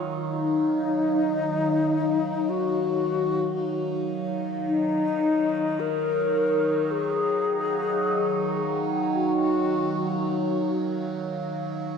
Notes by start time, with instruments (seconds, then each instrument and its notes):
Already playing: ambient pad D#3 F#3 D#4 C#5 F5
0.27 alto flute D#4
2.49 alto flute F#4
4.68 alto flute D#4
5.80 alto flute A#4
6.92 alto flute G#4
9.15 alto flute F#4